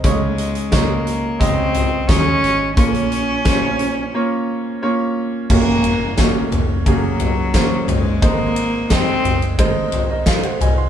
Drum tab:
CC |----------------|----------------|x---------------|----------------|
RD |----------------|----------------|--x-x-x-x-x-x-x-|x-x-x-xxx-x-xxx-|
HH |x-xxx-x-x-x-x-x-|xxx-x-x---------|----------------|----------------|
SD |----o-------o---|----o-----------|----o-------o---|----o-------o---|
FT |----------o-----|----------------|------o---o---o-|------o---o---o-|
BD |o---o---o---o---|o---o-----------|o---o---o---o---|o---o---o---o---|